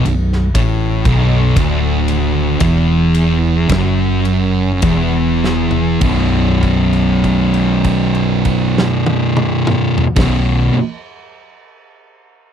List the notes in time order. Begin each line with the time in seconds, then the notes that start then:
0.05 B0 B1, ride
0.33 snare
0.55 A1 A2, kick, ride
1.05 B0 B1, kick, ride
1.56 D1 D2, kick, ride
2.08 ride
2.60 E1 E2, kick, ride
3.14 ride
3.69 F#1 F#2, kick, snare, ride
4.25 ride
4.82 E1 E2, kick, ride
5.44 snare
5.71 floor tom
6.01 B0 B1 F#2, kick, crash
6.06 B2
6.63 kick, crash
6.93 crash
7.24 kick, crash
7.54 crash
7.84 kick, crash
8.15 crash
8.45 kick, crash
8.78 snare
9.06 high tom
9.37 mid tom
9.67 mid tom
9.98 floor tom
10.16 B0 B1 F#2, kick, snare, crash
10.20 B2